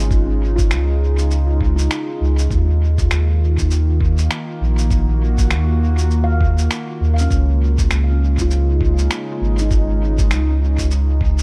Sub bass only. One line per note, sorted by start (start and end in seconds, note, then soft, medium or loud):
0.00 0.72 G#1 medium
0.71 1.88 C#2 medium
2.21 2.48 C#2 medium
2.51 3.08 D#2 medium
3.11 4.28 D#2 medium
4.61 5.52 A#1 medium
5.51 6.69 D#2 medium
7.01 7.28 D#2 medium
7.31 7.88 C#2 medium
7.91 9.08 C#2 medium
9.41 10.33 G#1 medium
10.31 11.43 C#2 medium